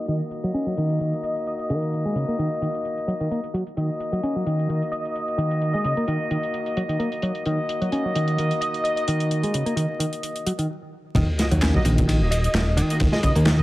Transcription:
0.08 D#3 A#3 D#4 F#4 D#5, closed hi-hat
0.31 closed hi-hat
0.44 F#3, closed hi-hat
0.54 C#4, closed hi-hat
0.66 F#3
0.77 D#3, closed hi-hat
0.90 closed hi-hat
1.00 D#3, closed hi-hat
1.13 closed hi-hat
1.23 D#5, closed hi-hat
1.36 closed hi-hat
1.47 D#5, closed hi-hat
1.59 D#5, closed hi-hat
1.70 D#3, closed hi-hat
1.82 closed hi-hat
1.93 closed hi-hat
2.05 G#3
2.15 C#3, closed hi-hat
2.28 A#3, closed hi-hat
2.39 D#3, closed hi-hat
2.62 D#3, closed hi-hat
2.74 closed hi-hat
2.85 closed hi-hat
2.98 closed hi-hat
3.08 F#3, closed hi-hat
3.20 D#3, closed hi-hat
3.31 A#3, closed hi-hat
3.44 closed hi-hat
3.54 F#3, closed hi-hat
3.67 closed hi-hat
3.77 D#3 A#3 D#4 F#4 D#5, closed hi-hat
4.00 closed hi-hat
4.12 F#3, closed hi-hat
4.23 C#4, closed hi-hat
4.36 F#3
4.46 D#3, closed hi-hat
4.59 closed hi-hat
4.69 D#3, closed hi-hat
4.82 closed hi-hat
4.92 D#5, closed hi-hat
5.05 closed hi-hat
5.16 closed hi-hat
5.28 closed hi-hat
5.38 D#3, closed hi-hat
5.51 closed hi-hat
5.62 closed hi-hat
5.73 G#3 D#5
5.84 C#3 D#5, closed hi-hat
5.97 A#3, closed hi-hat
6.08 D#3, closed hi-hat
6.31 D#3, closed hi-hat
6.43 closed hi-hat
6.54 closed hi-hat
6.66 closed hi-hat
6.77 F#3, closed hi-hat
6.89 D#3, closed hi-hat
6.99 A#3, closed hi-hat
7.12 closed hi-hat
7.22 F#3, closed hi-hat
7.35 closed hi-hat
7.46 D#3 A#3 D#4 F#4 D#5, closed hi-hat
7.69 closed hi-hat
7.81 F#3, closed hi-hat
7.92 C#4, closed hi-hat
8.05 F#3
8.15 D#3, closed hi-hat
8.28 closed hi-hat
8.38 D#3, closed hi-hat
8.51 closed hi-hat
8.61 D#5, closed hi-hat
8.74 closed hi-hat
8.84 D#5, closed hi-hat
8.96 D#5, closed hi-hat
9.08 D#3, closed hi-hat
9.20 closed hi-hat
9.31 closed hi-hat
9.43 G#3, closed hi-hat
9.54 C#3, closed hi-hat
9.66 A#3, closed hi-hat
9.76 D#3, closed hi-hat
9.99 D#3, closed hi-hat
10.13 closed hi-hat
10.23 closed hi-hat
10.36 closed hi-hat
10.46 F#3, closed hi-hat
10.59 D#3, closed hi-hat
11.15 D#1 D#3, kick, closed hi-hat, ride, sub drop
11.39 A#3 D#4 F#4 D#5, snare, closed hi-hat, ride
11.51 D#2 F#3, closed hi-hat
11.62 C#4, snare, clap, closed hi-hat, ride
11.74 F#3 A#3 D#4 F#4 D#5, kick
11.85 A#1 D#3, closed hi-hat, ride
11.98 kick, closed hi-hat
12.07 D#3, closed hi-hat, ride
12.20 D#1 A#3 D#4 F#4 D#5
12.31 D#5, closed hi-hat, ride
12.44 closed hi-hat
12.54 D#1 A#3 D#4 F#4 D#5, snare, clap, closed hi-hat, ride
12.77 D#3, closed hi-hat, ride
12.90 A#3 D#4 F#4 D#5, closed hi-hat, ride
13.00 D#1, kick, closed hi-hat, ride
13.12 G#3 D#5, snare
13.23 C#3 A#3 D#4 F#4 D#5, kick, closed hi-hat, ride
13.35 D#2 A#3, closed hi-hat, ride
13.45 D#3, snare, clap, closed hi-hat, ride
13.59 A#3 D#4 F#4 D#5, kick

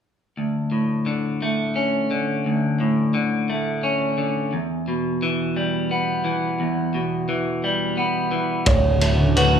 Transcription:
0.37 D2
0.71 A2
1.06 D3
1.42 A3
1.76 C#4
2.11 D3
2.46 D2
2.80 A2
3.14 D3
3.50 A3
3.83 C#4
4.18 D3
4.53 E2
4.88 B2
5.22 E3
5.56 G3
5.91 B3
6.25 E3
6.60 E2
6.94 B2
7.29 E3
7.64 G3
7.97 B3
8.31 E3
8.65 D1 D2 C#3 D3 F#3 A3 F#4 C#5, kick, ride
9.01 A3, ride
9.36 F#4 B4, ride

